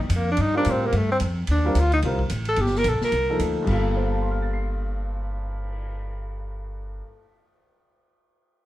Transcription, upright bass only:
0.09 0.37 F2 medium
0.38 0.65 G2 medium
0.66 0.92 A2 medium
0.93 1.20 G2 medium
1.21 1.47 F2 medium
1.48 1.74 D#2 medium
1.75 2.02 D2 medium
2.02 2.29 C2 medium
2.30 2.57 A1 medium
2.57 2.84 G1 medium
2.84 3.00 A#1 medium
3.01 muted upright bass stroke soft
3.12 3.38 C2 medium
3.39 3.66 D2 medium
3.67 7.00 G1 medium

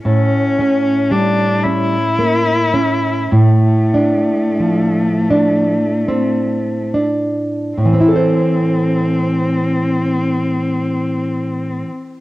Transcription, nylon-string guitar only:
0.05 3.27 A2 soft
0.59 1.43 C#4 soft
1.11 1.96 G3 soft
1.65 2.51 C#4 soft
2.19 2.73 A#3 soft
2.74 3.31 C#4 soft
3.32 7.74 A2 soft
3.94 5.01 D4 soft
4.60 5.75 F3 soft
5.30 6.58 D4 soft
6.08 6.94 C4 soft
6.94 7.77 D4 soft
7.78 11.82 A2 soft
7.85 11.90 E3 soft
7.93 11.98 C4 soft
8.01 8.15 E4 soft
8.08 12.13 A4 soft
8.16 12.20 C5 soft

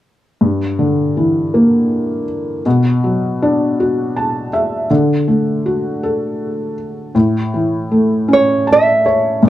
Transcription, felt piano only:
0.41 2.62 G2 soft
0.79 2.24 D3 soft
1.17 2.62 E3 soft
1.54 2.62 A#3 soft
2.66 4.86 B2 soft
3.04 4.49 F#3 soft
3.42 4.87 D4 soft
3.80 4.88 F#4 soft
4.16 4.50 A5 soft
4.53 4.88 E5 soft
4.91 7.12 D3 soft
5.28 6.74 A3 soft
5.66 7.12 F#4 soft
6.03 7.12 A4 soft
7.15 9.38 A2 soft
7.54 9.01 E3 soft
7.92 9.39 A3 soft
8.28 9.39 C#4 soft
8.67 9.02 A5 soft
9.06 9.40 C#5 soft
9.43 9.49 G2 soft

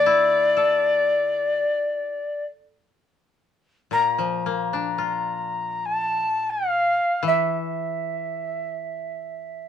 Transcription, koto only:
0.00 1.61 D3 medium
0.00 1.09 A3 soft
0.00 1.62 D4 soft
0.06 2.17 E4 soft
0.57 2.71 A4 soft
3.91 6.95 A#2 soft
4.18 6.21 F3 soft
4.46 6.47 A#3 soft
4.73 6.72 D4 soft
4.98 6.97 F4 soft
7.23 9.69 E3 soft

